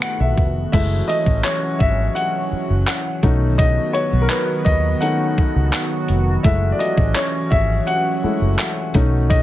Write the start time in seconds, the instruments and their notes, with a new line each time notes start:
Already playing: grand piano B2 B3 D#4 A4, analog synth pad D#3 A3 B3 F#4
0.02 grand piano F#5, finger snap, closed hi-hat
0.20 fingered electric bass B1, grand piano E5
0.38 fingered electric bass F1, kick
0.72 fingered electric bass F#1, analog synth pad E3 F#3 C#4 F#4, grand piano G#3 A3 E4 E5, kick, closed hi-hat, crash
1.08 grand piano D#5, synth pluck D#5, closed hi-hat
1.26 fingered electric bass A1, kick
1.44 grand piano C#5, clap, closed hi-hat
1.79 fingered electric bass G#1, grand piano E5, kick
2.15 grand piano F#5, closed hi-hat
2.52 muted fingered electric bass stroke
2.70 fingered electric bass F#1
2.87 synth pluck F#5, clap, closed hi-hat
3.23 fingered electric bass B1, analog synth pad D#3 B3, grand piano A3 C#4 D#4, kick, closed hi-hat
3.58 grand piano D#5, kick, closed hi-hat
3.93 grand piano C#5, closed hi-hat
4.13 fingered electric bass B1
4.22 grand piano A#4
4.29 grand piano B4, clap, closed hi-hat
4.65 fingered electric bass D#2, grand piano D#5, kick
5.01 grand piano A3 C#4 D#4 F#5, closed hi-hat
5.38 muted fingered electric bass stroke, kick
5.56 fingered electric bass C#2
5.73 clap, closed hi-hat
6.08 fingered electric bass F1, closed hi-hat
6.43 fingered electric bass F#1, analog synth pad E3 C#4, grand piano G#3 A3 E4 E5, kick, closed hi-hat
6.72 grand piano D5
6.79 grand piano D#5, closed hi-hat
6.98 fingered electric bass A1, kick
7.15 grand piano C#5, clap, closed hi-hat
7.51 fingered electric bass G#1, grand piano E5, kick
7.87 grand piano F#5, closed hi-hat
8.23 grand piano G#3 A3 E4, muted fingered electric bass stroke
8.42 fingered electric bass F#1
8.59 clap, closed hi-hat
8.94 fingered electric bass B1, analog synth pad D#3 F#3 B3, grand piano A3 C#4 D#4, kick, closed hi-hat
9.30 grand piano D#5, kick, closed hi-hat